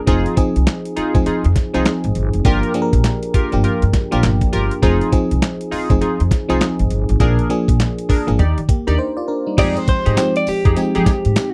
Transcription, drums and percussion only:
0.07 kick loud
0.07 closed hi-hat medium
0.26 closed hi-hat soft
0.37 kick medium
0.37 closed hi-hat medium
0.56 closed hi-hat medium
0.67 snare loud
0.67 clap medium
0.67 closed hi-hat medium
0.85 closed hi-hat medium
0.97 closed hi-hat medium
1.15 kick loud
1.15 closed hi-hat soft
1.26 closed hi-hat medium
1.45 closed hi-hat medium
1.56 kick loud
1.56 snare medium
1.56 closed hi-hat medium
1.74 closed hi-hat medium
1.85 snare loud
1.85 clap medium
1.85 closed hi-hat medium
2.04 closed hi-hat soft
2.15 closed hi-hat medium
2.34 closed hi-hat medium
2.45 kick loud
2.45 closed hi-hat medium
2.63 closed hi-hat soft
2.74 closed hi-hat medium
2.93 kick medium
2.93 closed hi-hat medium
3.04 snare loud
3.04 clap medium
3.04 closed hi-hat medium
3.23 closed hi-hat medium
3.34 kick medium
3.34 closed hi-hat medium
3.52 closed hi-hat soft
3.64 closed hi-hat medium
3.82 closed hi-hat soft
3.93 kick loud
3.93 snare medium
3.93 closed hi-hat medium
4.12 closed hi-hat medium
4.23 snare loud
4.23 clap medium
4.23 closed hi-hat medium
4.41 kick medium
4.41 closed hi-hat soft
4.53 closed hi-hat medium
4.71 closed hi-hat medium
4.83 kick loud
4.83 closed hi-hat medium
5.01 closed hi-hat soft
5.12 kick medium
5.12 closed hi-hat medium
5.31 closed hi-hat medium
5.42 snare loud
5.42 clap medium
5.42 closed hi-hat medium
5.61 closed hi-hat medium
5.72 open hi-hat medium
5.90 kick loud
5.90 closed hi-hat soft
6.01 closed hi-hat medium
6.20 closed hi-hat medium
6.31 kick loud
6.31 snare medium
6.31 closed hi-hat medium
6.50 closed hi-hat medium
6.61 snare loud
6.61 clap loud
6.61 closed hi-hat medium
6.79 closed hi-hat soft
6.90 closed hi-hat medium
7.09 closed hi-hat medium
7.20 kick loud
7.20 closed hi-hat medium
7.39 closed hi-hat soft
7.50 closed hi-hat medium
7.68 kick medium
7.68 closed hi-hat medium
7.80 snare loud
7.80 clap medium
7.80 closed hi-hat medium
7.99 closed hi-hat medium
8.10 kick medium
8.10 open hi-hat medium
8.28 closed hi-hat soft
8.39 closed hi-hat medium
8.58 closed hi-hat soft
8.69 kick loud
8.69 closed hi-hat medium
8.88 closed hi-hat soft
9.58 kick loud
9.58 closed hi-hat medium
9.58 crash loud
9.58 tambourine medium
9.77 closed hi-hat soft
9.88 kick loud
9.88 closed hi-hat medium
10.06 closed hi-hat medium
10.17 snare loud
10.17 clap loud
10.17 closed hi-hat medium
10.17 tambourine medium
10.36 closed hi-hat medium
10.47 open hi-hat medium
10.47 tambourine medium
10.65 kick loud
10.65 closed hi-hat soft
10.76 closed hi-hat medium
10.76 tambourine medium
10.95 closed hi-hat medium
11.06 kick loud
11.06 snare medium
11.06 closed hi-hat loud
11.06 tambourine medium
11.25 closed hi-hat medium
11.36 snare loud
11.36 clap medium
11.36 closed hi-hat medium
11.36 tambourine medium

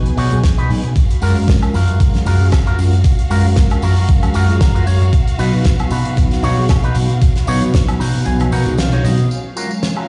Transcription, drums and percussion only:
0.04 closed hi-hat medium
0.04 high conga medium
0.17 open hi-hat loud
0.31 closed hi-hat medium
0.31 low conga medium
0.44 kick loud
0.44 snare loud
0.44 closed hi-hat medium
0.59 closed hi-hat soft
0.70 open hi-hat loud
0.84 closed hi-hat soft
0.96 kick loud
0.96 closed hi-hat medium
0.96 tambourine soft
1.09 closed hi-hat medium
1.09 tambourine soft
1.22 open hi-hat loud
1.22 tambourine medium
1.36 tambourine soft
1.48 kick loud
1.48 snare loud
1.48 closed hi-hat medium
1.48 tambourine soft
1.62 closed hi-hat soft
1.62 tambourine soft
1.62 high woodblock medium
1.74 open hi-hat loud
1.74 tambourine medium
1.74 high conga medium
1.88 closed hi-hat medium
1.88 tambourine soft
2.00 kick loud
2.00 closed hi-hat medium
2.00 tambourine soft
2.00 high conga medium
2.14 snare soft
2.14 closed hi-hat soft
2.14 tambourine soft
2.14 high conga medium
2.26 open hi-hat loud
2.26 tambourine medium
2.26 low conga medium
2.40 tambourine soft
2.51 kick loud
2.51 snare loud
2.51 closed hi-hat medium
2.51 tambourine soft
2.51 high woodblock medium
2.66 closed hi-hat medium
2.66 tambourine soft
2.79 open hi-hat loud
2.79 tambourine medium
2.93 closed hi-hat soft
2.93 tambourine soft
3.04 kick loud
3.04 closed hi-hat medium
3.04 tambourine medium
3.19 closed hi-hat medium
3.19 tambourine soft
3.31 open hi-hat loud
3.31 tambourine medium
3.44 tambourine soft
3.56 kick loud
3.56 snare loud
3.56 closed hi-hat medium
3.56 tambourine soft
3.70 closed hi-hat medium
3.70 tambourine soft
3.70 high woodblock medium
3.82 open hi-hat loud
3.82 tambourine medium
3.82 high conga medium
3.96 open hi-hat medium
3.96 tambourine soft
4.09 kick loud
4.09 closed hi-hat medium
4.09 tambourine soft
4.09 high conga medium
4.23 closed hi-hat medium
4.23 tambourine soft
4.23 high conga medium
4.23 high woodblock medium
4.34 open hi-hat medium
4.34 tambourine medium
4.49 closed hi-hat soft
4.49 tambourine soft
4.61 kick loud
4.61 snare loud
4.61 closed hi-hat medium
4.61 tambourine medium
4.75 closed hi-hat soft
4.75 tambourine soft
4.87 open hi-hat medium
4.87 tambourine medium
5.01 closed hi-hat soft
5.01 tambourine soft
5.13 kick loud
5.13 closed hi-hat medium
5.13 tambourine soft
5.27 closed hi-hat medium
5.27 tambourine soft
5.39 open hi-hat medium
5.39 tambourine medium
5.53 tambourine soft
5.64 kick loud
5.64 snare loud
5.64 closed hi-hat medium
5.64 tambourine soft
5.79 closed hi-hat medium
5.79 tambourine soft
5.79 high woodblock medium
5.90 open hi-hat loud
5.90 tambourine medium
5.90 high conga medium
6.05 closed hi-hat medium
6.05 tambourine soft
6.16 kick loud
6.16 closed hi-hat medium
6.16 tambourine medium
6.16 high conga medium
6.31 snare soft
6.31 closed hi-hat medium
6.31 tambourine soft
6.31 high conga medium
6.43 open hi-hat medium
6.43 tambourine medium
6.43 low conga medium
6.57 tambourine soft
6.69 kick loud
6.69 snare loud
6.69 closed hi-hat medium
6.69 tambourine medium
6.69 high woodblock medium
6.83 closed hi-hat soft
6.83 tambourine soft
6.95 open hi-hat loud
6.95 tambourine medium
7.10 closed hi-hat soft
7.10 tambourine soft
7.21 kick loud
7.21 closed hi-hat medium
7.21 tambourine medium
7.36 snare soft
7.36 closed hi-hat medium
7.36 tambourine soft
7.47 open hi-hat loud
7.47 tambourine loud
7.62 closed hi-hat medium
7.62 tambourine soft
7.62 high conga medium
7.74 kick loud
7.74 snare loud
7.74 closed hi-hat medium
7.74 tambourine medium
7.88 closed hi-hat medium
7.88 tambourine soft
7.88 high woodblock medium
8.00 open hi-hat loud
8.00 tambourine loud
8.00 high conga soft
8.15 open hi-hat medium
8.15 tambourine soft
8.25 closed hi-hat medium
8.25 tambourine medium
8.25 high conga medium
8.39 closed hi-hat medium
8.39 tambourine soft
8.39 high conga medium
8.39 high woodblock medium
8.52 open hi-hat loud
8.52 tambourine medium
8.66 closed hi-hat medium
8.66 tambourine soft
8.66 low conga medium
8.78 snare loud
8.78 closed hi-hat medium
8.78 tambourine medium
8.92 closed hi-hat medium
8.92 tambourine soft
9.04 open hi-hat loud
9.04 tambourine medium
9.18 closed hi-hat medium
9.18 tambourine soft
9.31 tambourine soft
9.57 tambourine medium
9.71 tambourine soft
9.83 snare loud
9.83 tambourine soft
9.97 high woodblock medium

